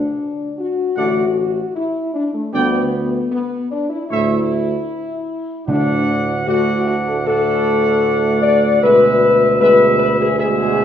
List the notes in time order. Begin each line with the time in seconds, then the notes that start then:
Already playing: D3 D4
0.58 F#4
0.96 A1 D3 A3 F#4 D5 F#5
1.76 E4
2.14 D4
2.33 A3
2.52 D2 D3 G3 B3 D5 G5
3.30 B3
3.71 D4
3.89 E4
4.07 D2 A2 A3 E4 C#5 E5
5.67 D2 A2 D3 A3 D4 D5 F#5
6.47 A2 A3 F#4 D5 F#5
6.85 F#4
7.07 A4
7.25 A2 A3 A4 D5 F#5
8.42 D5
8.82 B2 G#3 B4 E5
9.60 B2 G#3 B4 E5
9.98 B4
10.20 G#4
10.37 B2 G#3 G#4 E5